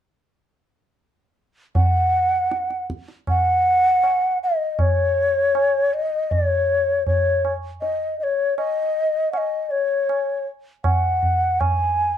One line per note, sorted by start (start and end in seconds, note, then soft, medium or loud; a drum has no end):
1.75 2.85 F#5 loud
1.75 tabla tin medium
1.75 tabla ge medium
2.51 tabla te medium
2.70 tabla te medium
2.90 tabla ke medium
3.08 tabla te soft
3.27 4.38 F#5 loud
3.27 tabla na medium
3.27 tabla ge medium
4.03 tabla na medium
4.43 4.82 D#5 medium
4.79 5.95 C#5 medium
4.79 tabla na medium
4.79 tabla ge medium
5.55 tabla na medium
5.94 6.33 D#5 medium
6.31 7.07 C#5 medium
6.31 tabla tin medium
6.31 tabla ge medium
7.07 7.52 C#5 medium
7.07 tabla tin medium
7.07 tabla ge medium
7.45 tabla na soft
7.81 8.17 D#5 medium
7.81 tabla tin medium
8.20 8.55 C#5 medium
8.20 8.24 D#5 medium
8.58 9.29 D#5 medium
8.58 tabla na medium
9.33 9.39 F#5 medium
9.33 tabla na medium
9.38 9.72 D#5 medium
9.70 10.46 C#5 medium
10.09 tabla na medium
10.84 11.62 F#5 medium
10.84 tabla na medium
10.84 tabla ge medium
11.23 tabla ge soft
11.60 12.18 G#5 medium
11.60 tabla na medium
11.60 tabla ge medium